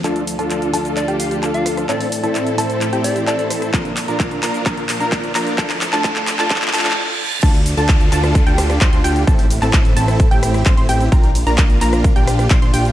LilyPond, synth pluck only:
\new Staff \with { instrumentName = "Synth pluck" } { \time 4/4 \key d \minor \tempo 4 = 130 a''8 r16 a''8. a''8. g''8. a''4 | a''8 r16 a''8. a''8. g''8. a''4 | bes''8 r16 bes''8. bes''8 bes''8 r16 bes''8. bes''8 | a''8 r16 a''16 a''8 r16 a''16 a''8 a''8 r4 |
a''8 r16 a''8. a''8. g''8. c'''16 c'''16 g''8 | a''8 r16 a''8. a''8. g''8. c'''16 c'''16 g''8 | bes''8 r16 bes''8. bes''8. g''8. c'''16 c'''16 g''8 | }